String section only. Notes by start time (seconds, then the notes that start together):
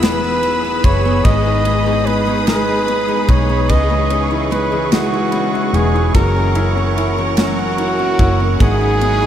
Already playing: G#4 B4 B5 E6
1.24 D#6
3.69 C#6
6.15 A#4 F#5
8.60 G#4 B5 D#6